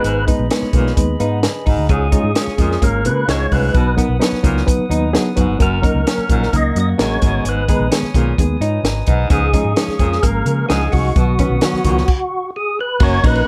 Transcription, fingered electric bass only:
0.04 G#1
0.39 A#1
0.62 muted fingered electric bass stroke
0.73 B1
0.97 D#2
1.20 G#2
1.67 G#1
1.78 D2
1.89 C#2
2.24 G#2
2.47 muted fingered electric bass stroke
2.58 F2
2.82 G#1
3.06 C#3
3.28 C#2
3.52 C2
3.75 B1
4.09 B1
4.32 muted fingered electric bass stroke
4.44 C#2
4.79 muted fingered electric bass stroke
4.90 D#2
5.37 F#2
5.48 G1
5.60 F#1
5.95 C#2
6.18 muted fingered electric bass stroke
6.29 A#1
6.53 C#2
6.75 F#2
6.99 A1
7.22 G#1
7.45 G#1
7.79 A#1
8.03 muted fingered electric bass stroke
8.14 B1
8.38 D#2
8.60 G#2
8.83 G#1
9.07 B1
9.30 C#2
9.64 G#2
9.88 muted fingered electric bass stroke
9.99 F2
10.23 G#1
10.45 C#3
10.70 C#2
10.93 C2
11.16 B1
11.50 B1
11.73 muted fingered electric bass stroke
11.84 C#2
13.00 F#1
13.24 A#1

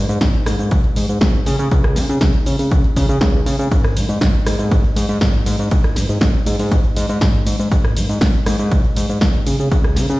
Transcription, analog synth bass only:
0.09 G#2
0.22 G#1
0.46 G#2
0.59 G#2
0.72 G#1
0.84 G#2
0.96 G#2
1.09 G#2
1.21 G#1
1.47 C#3
1.59 C#3
1.72 C#2
1.96 C#3
2.09 C#3
2.22 C#2
2.46 C#3
2.59 C#3
2.71 C#2
2.84 C#3
2.97 C#3
3.09 C#3
3.22 C#2
3.46 C#3
3.59 C#3
3.71 G#1
3.96 G#2
4.09 G#2
4.21 G#1
4.46 G#2
4.59 G#2
4.71 G#1
4.84 G#2
4.96 G#2
5.09 G#2
5.22 G#1
5.46 G#2
5.59 G#2
5.71 G#1
5.96 G#2
6.09 G#2
6.22 G#1
6.46 G#2
6.59 G#2
6.71 G#1
6.84 G#2
6.97 G#2
7.09 G#2
7.22 G#1
7.47 G#2
7.59 G#2
7.72 G#1
7.97 G#2
8.09 G#2
8.21 G#1
8.46 G#2
8.59 G#2
8.72 G#1
8.84 G#2
8.97 G#2
9.10 G#2
9.22 G#1
9.47 C#3
9.60 C#3
9.72 C#2
9.97 C#3
10.10 C#3

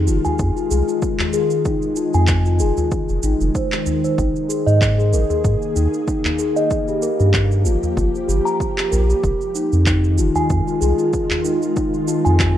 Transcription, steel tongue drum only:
0.07 F4
0.25 G#5
0.56 F4
0.71 G#4
0.88 F4
1.34 G#4
1.65 D#4
1.97 F4
2.14 G#5
2.46 F4
2.60 G#4
2.78 F4
3.24 D#4
3.55 C5
3.87 D#4
4.04 C5
4.18 D#4
4.49 G#4
4.67 D#5
4.99 G#4
5.13 A#4
5.30 G#4
5.76 D#4
6.08 D#4
6.39 G#4
6.56 D#5
6.88 G4
7.02 A#4
7.20 G4
7.65 F4
7.97 F4
8.28 G4
8.45 A#5
8.78 G4
8.92 A#4
9.09 G4
9.55 D#4
9.87 D#4
10.19 F4
10.36 G#5
10.67 F4
10.81 G#4
10.98 F4
11.44 D#4
11.76 D#4
12.08 F4
12.25 G#5

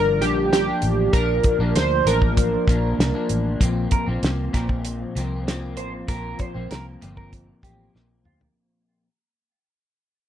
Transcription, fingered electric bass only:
Already playing: G1
0.21 A#1
0.83 A1
1.13 A#1
1.59 A#1
1.75 D2
2.05 A1
2.68 A#1
2.99 C2
3.30 A1
3.61 A#1
4.07 A#1
4.23 C2
4.54 A#1
5.16 C2
5.77 A1
6.08 A#1
6.55 A#1
6.71 C2
7.02 G1
7.63 A1
7.95 A#1
8.26 D2

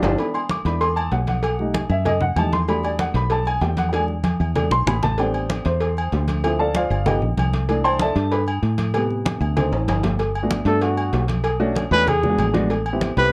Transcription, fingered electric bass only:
0.02 G1
0.65 E2
1.12 B1
1.89 F#2
2.36 E2
3.14 B1
3.61 E2
4.40 E2
4.71 B1
4.86 A1
5.66 E2
6.12 D2
6.90 G1
7.22 A#1
7.37 C2
8.16 G2
8.62 A2
9.40 D2
9.72 A1
9.87 G1
10.65 G2
11.13 B1
11.91 E2
12.38 A1
13.17 C2

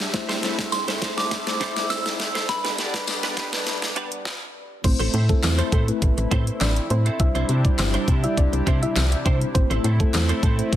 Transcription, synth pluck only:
4.84 C4 C5
5.29 A3 A4
5.73 A3 A4
6.32 C4 C5
6.61 D4 D5
6.91 C4 C5
7.20 E4 E5
7.65 D4 D5
7.78 C4 C5
8.24 E4 E5
8.38 D4 D5
8.82 E4 E5
9.26 C4 C5
9.55 C4 C5
10.00 A3 A4
10.43 A3 A4

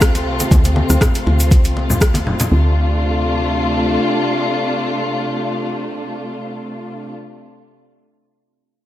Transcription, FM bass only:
Already playing: D2
0.27 C2
0.51 D2
0.90 D2
1.27 D2
1.65 C2
1.90 D2
2.26 D1
2.52 D2

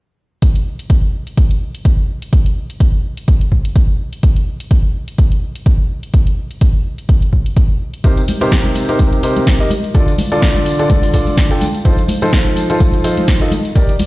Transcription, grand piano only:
8.04 C3 D#4 G4 A#4 C5
8.41 C3 D#4 G4 A#4 C5
8.89 C3 D#4 G4 A#4 C5
9.23 C3 D#4 G4 A#4 C5
9.60 D#4 G4 A#4 D#5
9.95 D3 D4 F4 A4 D5
10.32 D3 D4 F4 A4 D5
10.79 D3 D4 F4 A4 D5
11.14 D3 D4 F4 A4 D5
11.51 D3 D4 F4 A4 G5
11.85 F3 D#4 F4 A4 C5
12.22 F3 D#4 F4 A4 C5
12.70 F3 D#4 F4 A4 C5
13.04 F3 D#4 F4 A4 C5
13.41 D#3 D#4 F4 A4 D#5
13.76 D#3 D#4 G4 A#4 D5

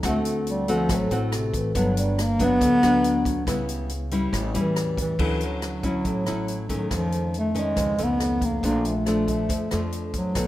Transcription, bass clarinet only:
0.08 A3
0.50 G3
0.71 F3
0.95 F#3
1.15 A2
1.37 C3
1.56 E3
1.78 F#3
1.98 G3
2.22 A#3
2.44 B3
4.58 E3
5.01 E3
5.45 F#3
5.86 F#3
6.74 F#3
6.97 F3
7.39 A3
7.59 G#3
8.03 B3
8.45 A#3
8.65 A#3
8.87 A3
9.29 A3
10.18 F#3

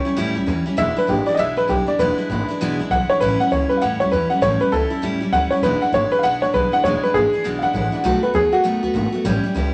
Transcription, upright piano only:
Already playing: C#5
0.78 E5
0.98 B4
1.09 G4
1.27 D5
1.34 D#5
1.39 E5
1.57 B4
1.69 G4
1.88 D5
1.99 B4
2.91 F#5
3.10 C#5
3.20 B4
3.40 F#5
3.52 C#5
3.69 B4
3.77 F5
3.82 F#5
4.00 C#5
4.12 B4
4.30 F#5
4.42 C#5
4.61 B4
4.72 A4
5.33 F#5
5.50 C#5
5.63 B4
5.82 F#5
5.94 C#5
6.12 B4
6.19 F5
6.23 F#5
6.42 C#5
6.54 B4
6.73 F#5
6.84 C#5
7.03 B4
7.14 G#4
7.59 F5
7.63 F#5
8.23 B4
8.35 G#4
8.53 F#4

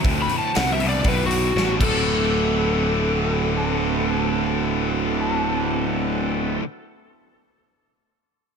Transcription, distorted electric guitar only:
0.04 D2 A2
0.54 D2 B2
0.80 D2 B2
1.04 D2 A2
1.56 D2 B2
1.80 D2 A2 D3

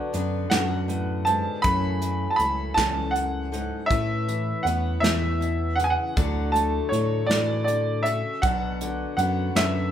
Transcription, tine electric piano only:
0.14 F#2
0.52 F#2
1.65 F#2
2.39 C#2
2.77 C#2
3.90 A2
4.65 E2
5.03 E2
6.17 D2
6.92 A2
7.29 A2
8.43 B1
9.18 F#2
9.56 F#2

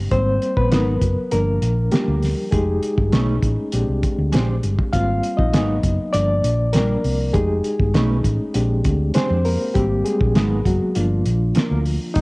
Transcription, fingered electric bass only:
0.12 G#1
0.57 A#1
0.72 G#1
1.01 F#1
1.32 G1
1.62 A#1
2.08 D2
2.52 F1
2.98 G1
3.13 B1
3.42 A1
3.73 A#1
3.88 C2
4.18 D2
4.34 A#1
4.64 G1
4.94 G#1
5.38 A#1
5.54 G#1
5.84 F#1
6.14 G1
6.44 A#1
7.05 C2
7.34 F1
7.80 G1
7.95 B1
8.25 A1
8.55 A#1
8.85 D2
9.15 muted fingered electric bass stroke
9.30 F2
9.75 G#1
10.21 A#1
10.36 G#1
10.65 F#1
10.96 G1
11.26 A#1
11.71 D2
12.16 F1

